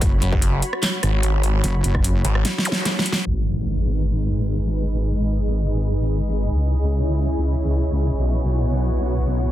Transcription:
Already playing: F#4 C#5 B5
0.02 F#1, kick, closed hi-hat
0.22 F#1, closed hi-hat
0.33 kick
0.42 closed hi-hat
0.62 closed hi-hat
0.73 cross-stick
0.83 snare, clap, closed hi-hat
1.03 G#1, cross-stick, closed hi-hat
1.23 closed hi-hat
1.43 closed hi-hat
1.64 F#1, closed hi-hat
1.84 F#1, closed hi-hat
1.95 kick, cross-stick
2.04 closed hi-hat
2.25 G#1, closed hi-hat
2.35 cross-stick
2.45 snare, closed hi-hat
2.58 snare
2.65 closed hi-hat, zap
2.72 snare
2.85 snare, closed hi-hat
2.99 snare
3.06 closed hi-hat
3.13 snare
3.26 G#1 G#3 D#4 G#4 B4, impact
3.42 D#5
3.68 B5
6.50 C#2 C#4 E4 G#4
6.65 C#5
7.10 G#5
8.12 B1 B3 C#4 F#4 C#5
8.53 B4 F#5

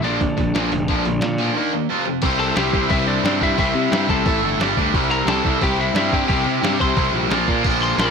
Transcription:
0.03 A#1 A#2 D3 F3 A#3 D4 D5, open hi-hat
0.21 A#1 A#2 D3 F3, kick, open hi-hat
0.37 A#1 A#2 D3 F3, kick, open hi-hat
0.55 A#1 A#2 D3 F3 A#3, snare, open hi-hat
0.72 F1 A#2 D3 F3, open hi-hat
0.88 A#1 A#2 D3 F3 A#3, kick, open hi-hat
1.05 A#1 A#2 D3 F3, open hi-hat
1.20 A#2 F3, snare, open hi-hat
1.24 D3
1.38 A#2 D3 F3 A#3, open hi-hat
1.56 D#3 A#3 D#4
1.73 D#3 A#3
1.89 F2 C3 F3 C4 F4
2.05 F2 C3 F3 C4
2.22 C2 C3 G3 C4 E4 G4 C5, kick, open hi-hat, crash
2.39 A4 A5
2.55 C2 C3 G3 C4 E4 G4 C5 G5, snare, open hi-hat
2.73 C2 C3 G3 C4 E4 G4 C5, kick
2.89 C2 C3 G3 C4 E4 G4 C5 E5, kick, open hi-hat
3.07 D4 D5
3.24 G2 C3 G3 C4 D4 E4 G4 C5 D5, snare, open hi-hat
3.41 C3 G3 C4 E4 G4 C5 E5, kick
3.58 C2 C3 G3 C4 E4 G4 C5 E5, kick, open hi-hat
3.75 C3
3.91 G2 C3 G3 C4 E4 G4 C5, snare, open hi-hat
4.09 C2 C3 G3 C4 E4 G4 A4 C5 A5, kick
4.26 A1 A2 E3 A3 E4 A4 E5, kick, open hi-hat
4.42 G1
4.60 G1 G2 D3 G3 D4 G4 D5, snare, open hi-hat
4.77 D2 G2 D3 G3 D4 G4 D5, kick
4.94 C2 C3 G3 C4 E4, kick, open hi-hat
5.11 A#4 A#5
5.26 C2 C3 G3 C4 E4 A4 A5, snare, open hi-hat
5.44 C2 C3 G3 C4 E4, kick
5.61 C2 C3 G3 C4 E4 G4 G5, kick, open hi-hat
5.80 E4 E5
5.94 G2 C3 G3 C4 E4 E5, snare, open hi-hat
6.12 C3 G3 C4 E4 G4 G5, kick
6.28 C2 C3 G3 C4 E4 G4 G5, kick, open hi-hat
6.46 C3
6.62 G2 C3 G3 C4 E4, snare, open hi-hat
6.80 C2 C3 G3 C4 E4 C5 C6, kick
6.97 C2 C3 G3 C4 E4, kick, open hi-hat
7.13 A#1
7.30 A#1 A#2 F3 A#3 F4, snare, open hi-hat
7.48 A#2 F3 A#3 F4, kick
7.64 A#1 A#2 D3 F3 A#3 F4, kick, crash
7.83 C5 C6
7.98 A#1 A#2 D3 F3 A#3 F4 A#4 A#5, snare, open hi-hat

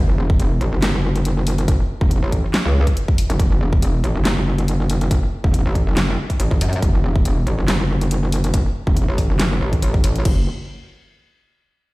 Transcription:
Already playing: F#1
0.18 E1
0.30 kick
0.40 closed hi-hat
0.61 A1, closed hi-hat
0.72 F#1
0.82 snare, clap, closed hi-hat
0.94 F#1
1.16 closed hi-hat
1.25 closed hi-hat
1.47 open hi-hat
1.58 closed hi-hat
1.68 kick, closed hi-hat
2.01 E1, kick
2.11 closed hi-hat
2.22 A1
2.32 kick, closed hi-hat
2.54 snare, clap, closed hi-hat
2.65 C#2
2.87 kick, closed hi-hat
2.97 closed hi-hat
3.08 kick
3.18 open hi-hat
3.30 F#1, closed hi-hat
3.40 F#1, kick, closed hi-hat
3.61 E1
3.73 kick
3.82 closed hi-hat
4.04 A1, closed hi-hat
4.15 F#1
4.25 snare, clap, closed hi-hat
4.37 F#1
4.58 closed hi-hat
4.68 closed hi-hat
4.90 open hi-hat
5.01 closed hi-hat
5.11 kick, closed hi-hat
5.44 E1, kick
5.54 closed hi-hat
5.66 A1
5.75 kick, closed hi-hat
5.87 F#1
5.97 snare, clap, closed hi-hat
6.30 kick, closed hi-hat
6.40 A1, closed hi-hat
6.51 kick
6.61 F#2, open hi-hat
6.73 closed hi-hat
6.82 F#1, kick, closed hi-hat
7.04 E1
7.16 kick
7.25 closed hi-hat
7.47 A1, closed hi-hat
7.58 F#1
7.68 snare, clap, closed hi-hat
7.80 F#1
8.01 closed hi-hat
8.11 closed hi-hat
8.32 open hi-hat
8.44 closed hi-hat
8.54 kick, closed hi-hat
8.87 E1, kick
8.97 closed hi-hat
9.08 A1
9.18 kick, open hi-hat
9.30 F#1
9.39 snare, clap, closed hi-hat
9.61 A1
9.73 kick, closed hi-hat
9.82 closed hi-hat
9.94 kick
10.04 A1, open hi-hat
10.16 closed hi-hat
10.25 F#1, kick, crash

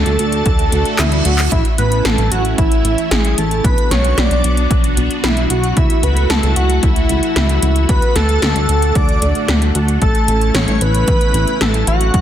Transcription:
Already playing: A3 D4 F#4 A4
0.06 D2, closed hi-hat
0.19 D2, closed hi-hat
0.32 closed hi-hat
0.46 D2, kick, closed hi-hat, reverse cymbal
0.59 closed hi-hat
0.72 D2, closed hi-hat
0.85 closed hi-hat
0.99 D2 E4, snare, clap, closed hi-hat
1.12 closed hi-hat
1.25 D2 F#4, closed hi-hat
1.38 clap, closed hi-hat
1.52 A1 C#4 E4, kick, closed hi-hat
1.65 closed hi-hat
1.78 A1 B4, closed hi-hat
1.92 closed hi-hat
2.05 A1 A4, snare, closed hi-hat
2.18 A1, closed hi-hat
2.31 A1 F#4, closed hi-hat
2.45 closed hi-hat
2.58 A1 E4, kick, closed hi-hat
2.72 closed hi-hat
2.85 A1, closed hi-hat
2.98 closed hi-hat
3.11 A1 G#4, snare, closed hi-hat
3.25 closed hi-hat
3.38 A1 A4, closed hi-hat
3.51 closed hi-hat
3.64 B1 B3 D4 F#4 B4, kick, closed hi-hat
3.78 closed hi-hat
3.91 B1 C#5, snare, closed hi-hat
4.05 closed hi-hat
4.17 B1 D5, snare, closed hi-hat
4.31 B1, closed hi-hat
4.44 B1, closed hi-hat
4.57 closed hi-hat
4.70 B1, kick, closed hi-hat
4.84 closed hi-hat
4.97 B1, closed hi-hat
5.11 closed hi-hat
5.24 B1 E4, snare, closed hi-hat
5.37 closed hi-hat
5.50 B1 F#4, closed hi-hat
5.64 closed hi-hat
5.77 C#2 A3 E4, kick, closed hi-hat
5.90 closed hi-hat
6.03 C#2 B4, closed hi-hat
6.17 closed hi-hat
6.30 C#2 A4, snare, closed hi-hat
6.43 C#2, closed hi-hat
6.56 C#2 F#4, closed hi-hat
6.70 closed hi-hat
6.83 C#2 E4, kick, closed hi-hat
6.96 closed hi-hat
7.09 C#2, closed hi-hat
7.23 closed hi-hat
7.36 C#2, snare, closed hi-hat
7.49 closed hi-hat
7.62 C#2, closed hi-hat
7.76 closed hi-hat
7.89 D2 A3 D4 B4, kick, closed hi-hat
8.02 closed hi-hat
8.16 D2 A4, snare, closed hi-hat
8.29 closed hi-hat
8.42 D2, snare, closed hi-hat
8.56 D2, closed hi-hat
8.69 D2, closed hi-hat
8.82 closed hi-hat
8.95 D2 D5, kick, closed hi-hat
9.09 closed hi-hat
9.22 D2, closed hi-hat
9.35 closed hi-hat
9.48 D2, snare, closed hi-hat
9.62 closed hi-hat
9.75 D2, closed hi-hat
9.88 closed hi-hat
10.02 A1 C#4 E4 A4, kick, closed hi-hat
10.15 closed hi-hat
10.28 A1, closed hi-hat
10.41 closed hi-hat
10.55 A1 C#5, snare, closed hi-hat
10.68 A1, closed hi-hat
10.81 A1 B4, closed hi-hat
10.94 closed hi-hat
11.08 A1, kick, closed hi-hat
11.21 closed hi-hat
11.34 A1, closed hi-hat
11.47 closed hi-hat
11.61 A1 A4, snare, closed hi-hat
11.74 closed hi-hat
11.87 A1 F#4, closed hi-hat
12.01 closed hi-hat
12.14 B1 B3 D4 F#4, kick, closed hi-hat

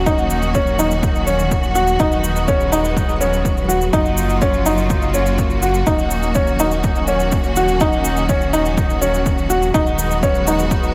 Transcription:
Already playing: D#1 D#3 F#3 A#3 C#4 F#4
0.06 D#4, kick, shaker
0.18 shaker
0.30 shaker
0.42 shaker
0.55 C#4, kick, shaker
0.67 shaker
0.79 D#4, shaker
0.91 shaker
1.03 kick, shaker
1.15 shaker
1.27 C#4, shaker
1.39 shaker
1.51 kick, shaker
1.63 shaker
1.75 F#4, shaker
1.87 shaker
1.99 D#1 F#3 G#3 B3 D#4, kick, shaker
2.12 shaker
2.24 shaker
2.36 shaker
2.48 C#4, kick, shaker
2.61 shaker
2.72 D#4, shaker
2.85 shaker
2.97 kick, shaker
3.09 shaker
3.21 C#4, shaker
3.33 shaker
3.45 kick, shaker
3.57 shaker
3.69 F#4, shaker
3.81 shaker
3.93 F#1 C#3 A#3 D#4 F4 F#4, kick, shaker
4.05 shaker
4.17 shaker
4.30 shaker
4.42 C#4, kick, shaker
4.54 shaker
4.66 D#4, shaker
4.78 shaker
4.90 kick, shaker
5.02 shaker
5.14 C#4, shaker
5.26 shaker
5.38 kick, shaker
5.50 shaker
5.62 F#4, shaker
5.74 shaker
5.87 D#1 D#3 F#3 C#4 D#4, kick, shaker
5.99 shaker
6.11 shaker
6.23 shaker
6.35 C#4, kick, shaker
6.47 shaker
6.59 D#4, shaker
6.71 shaker
6.84 kick, shaker
6.96 shaker
7.07 C#4, shaker
7.20 shaker
7.32 kick, shaker
7.44 shaker
7.56 F#4, shaker
7.68 shaker
7.80 D#4, kick, shaker
7.93 shaker
8.05 shaker
8.17 shaker
8.29 C#4, kick, shaker
8.41 shaker
8.53 D#4, shaker
8.66 shaker
8.78 kick, shaker
8.90 shaker
9.02 C#4, shaker
9.14 shaker
9.26 kick, shaker
9.38 shaker
9.50 F#4, shaker
9.63 shaker
9.74 D#1 G#3 B3 D#4 F#4, kick, shaker
9.87 shaker
9.99 shaker
10.11 shaker
10.23 C#4, kick, shaker
10.35 shaker
10.47 D#4, shaker
10.59 shaker
10.71 kick, shaker
10.83 shaker

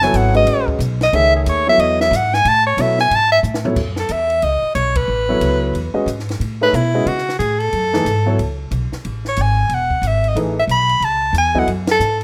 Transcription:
Already playing: F#1
0.02 F#3 B3 E4 A4 C#5 G#5, snare
0.13 G#1 F#5, hi-hat pedal, ride
0.34 G#3 C#4 F#4 B4 D#5, ride
0.45 A1, ride
0.68 kick
0.79 B1, hi-hat pedal, ride
1.01 D#5, snare, ride
1.13 C#2 D#3 A3 G#4 C#5 E5, ride
1.36 G#4
1.46 D#2 C#5, hi-hat pedal, ride
1.67 F#3 B3 E4 A4 C#5 E5
1.78 E2 D#5, ride
2.01 E5, snare
2.11 G#2, hi-hat pedal, ride
2.16 F#5
2.33 G#5, snare
2.45 A2 A5, ride
2.66 C#5
2.77 B2 F#3 B3 E4 A4 C#5, hi-hat pedal, ride
2.81 E5
2.99 G#5, snare
3.11 G#2, ride
3.15 A5
3.32 E5
3.43 A2, hi-hat pedal
3.54 snare
3.65 F#3 B3 E4 A4 C#5, floor tom
3.76 F#2, kick, crash
3.96 A4, snare
4.09 E2 E5, hi-hat pedal, ride
4.30 ride
4.42 C#2 D#5, ride
4.62 muted upright bass stroke
4.75 B1 C#5, hi-hat pedal, ride
4.95 B4, kick, ride
5.08 A1
5.29 F#3 B3 E4 A4 C#5
5.40 C#2, hi-hat pedal, ride
5.73 E2, ride
5.94 G#3 C#4 F#4 B4 D#5, muted upright bass stroke
6.06 G#2, hi-hat pedal, ride
6.19 snare
6.29 snare, ride
6.40 A2, ride
6.61 A3 D#4 G#4 B4 C#5 E5
6.73 B2 E4, hi-hat pedal, ride
6.94 G#3 C#4 F#4 B4 D#5
7.06 C#3 F#4, ride
7.18 snare
7.29 snare
7.39 A2 G#4, hi-hat pedal, ride
7.60 A4, ride
7.73 F#2, ride
7.93 E3 A3 D#4 G#4 B4, snare
8.05 G#2, hi-hat pedal, ride
8.26 F#3 B3 E4 A4 C#5
8.39 C#2, ride
8.71 B1, hi-hat pedal, ride
8.92 muted upright bass stroke, snare
9.05 A1, ride
9.25 C#5, snare
9.37 G#1, hi-hat pedal, ride
9.42 G#5
9.69 E1, ride
9.74 F#5
9.90 kick
10.02 G#1, hi-hat pedal, ride
10.07 E5
10.24 ride
10.29 D#5
10.35 A1 E3 A3 D#4 G#4 B4, ride
10.59 E5
10.67 B1 B5, hi-hat pedal, ride
10.89 ride
11.00 C#2, ride
11.05 A5
11.33 E2, hi-hat pedal, ride
11.38 G#5
11.54 F#3 B3 E4 A4 D#5, kick
11.59 F#5
11.67 F#2, ride
11.87 snare, ride
11.91 A4
12.00 G#2, hi-hat pedal
12.21 ride

